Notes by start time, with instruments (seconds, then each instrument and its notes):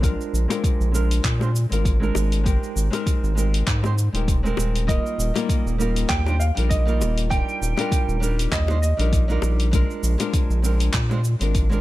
Already playing: analog synth bass A#1
0.00 nylon-string guitar G#3 C4 D4 F4 A#4, kick, open hi-hat, cabasa
0.21 cabasa
0.33 analog synth bass A#1, cabasa
0.48 nylon-string guitar G#3 C4 D4 F4 A#4, open hi-hat, high bongo, cabasa
0.64 kick, open hi-hat, cabasa
0.80 analog synth bass A#1, cabasa
0.92 nylon-string guitar G#3 C4 D4 F4 A#4, cabasa
1.11 open hi-hat, cabasa
1.24 analog synth bass A#2, kick, clap, open hi-hat, cabasa
1.39 nylon-string guitar G#3 C4 D4 F4 C5, high bongo, cabasa
1.56 cabasa
1.69 analog synth bass G#1, nylon-string guitar G#3 C4 D4 F4 A#4, open hi-hat, cabasa
1.85 kick, open hi-hat, cabasa
2.00 nylon-string guitar G#3 C4 D4 F4 A#4, cabasa
2.15 analog synth bass G#1, high bongo, cabasa
2.32 open hi-hat, cabasa
2.43 nylon-string guitar G#3 C4 D#4 G4 A#4, kick, open hi-hat, cabasa
2.64 cabasa
2.76 analog synth bass G#1, cabasa
2.90 nylon-string guitar G#3 C4 D#4 G4 A#4, open hi-hat, high bongo, cabasa
3.07 kick, open hi-hat, cabasa
3.23 analog synth bass G#1, cabasa
3.35 nylon-string guitar G#3 C4 D#4 G4 A#4, cabasa
3.54 open hi-hat, cabasa
3.67 analog synth bass G#2, kick, clap, open hi-hat, cabasa
3.82 nylon-string guitar G#3 C4 D#4 G4 C5, high bongo, cabasa
3.98 cabasa
4.13 analog synth bass D#1, nylon-string guitar G#3 C4 D#4 G4 A#4, open hi-hat, cabasa
4.28 kick, open hi-hat, cabasa
4.43 nylon-string guitar G#3 C4 D#4 G4 A#4, cabasa
4.57 analog synth bass D#1, high bongo, cabasa
4.76 open hi-hat, cabasa
4.87 nylon-string guitar G3 A#3 D#4 F4 A#4, grand piano D#5, kick, open hi-hat, cabasa
5.06 cabasa
5.19 analog synth bass D#1, cabasa
5.34 nylon-string guitar G3 A#3 D#4 F4 A#4, open hi-hat, high bongo, cabasa
5.49 kick, open hi-hat, cabasa
5.66 analog synth bass D#1, cabasa
5.78 nylon-string guitar G3 A#3 D#4 F4 A#4, cabasa
5.96 open hi-hat, cabasa
6.09 analog synth bass D#2, grand piano G5, kick, clap, open hi-hat, cabasa
6.25 nylon-string guitar G3 D4 D#4 F4 C5, high bongo, cabasa
6.40 grand piano F5, cabasa
6.55 analog synth bass A#1, nylon-string guitar G3 D4 D#4 F4 A#4, open hi-hat, cabasa
6.69 grand piano D#5, kick, open hi-hat, cabasa
6.85 nylon-string guitar G3 A#3 D#4 F4 A#4, cabasa
7.01 analog synth bass D#1, high bongo, cabasa
7.18 open hi-hat, cabasa
7.30 nylon-string guitar G3 D4 D#4 F4 A#4, grand piano G5, kick, open hi-hat, cabasa
7.49 cabasa
7.62 analog synth bass D#1, cabasa
7.77 nylon-string guitar G3 D4 D#4 F4 A#4, open hi-hat, high bongo, cabasa
7.92 kick, open hi-hat, cabasa
8.08 analog synth bass D#1, cabasa
8.20 nylon-string guitar G3 D4 D#4 F4 A#4, cabasa
8.39 open hi-hat, cabasa
8.52 analog synth bass D#2, grand piano D#5, kick, clap, open hi-hat, cabasa
8.67 nylon-string guitar G3 D4 D#4 F4 C5, high bongo, cabasa
8.82 grand piano D#5, cabasa
8.97 analog synth bass A#1, nylon-string guitar G3 D4 D#4 F4 A#4, open hi-hat, cabasa
9.13 kick, open hi-hat, cabasa
9.28 nylon-string guitar G3 D4 D#4 F4 A#4, cabasa
9.42 analog synth bass A#1, high bongo, cabasa
9.60 open hi-hat, cabasa
9.71 nylon-string guitar G#3 C4 D4 F4 A#4, kick, open hi-hat, cabasa
9.91 cabasa
10.03 analog synth bass A#1, cabasa
10.18 nylon-string guitar G#3 C4 D4 F4 A#4, open hi-hat, high bongo, cabasa
10.33 kick, open hi-hat, cabasa
10.50 analog synth bass A#1, cabasa
10.62 nylon-string guitar G#3 C4 D4 F4 A#4, cabasa
10.80 open hi-hat, cabasa
10.94 analog synth bass A#2, kick, clap, open hi-hat, cabasa
11.09 nylon-string guitar G#3 C4 D4 F4 C5, high bongo, cabasa
11.24 cabasa
11.39 analog synth bass G#1, nylon-string guitar G#3 C4 D4 F4 A#4, open hi-hat, cabasa
11.55 kick, open hi-hat, cabasa
11.69 nylon-string guitar G#3 C4 D4 F4 A#4, cabasa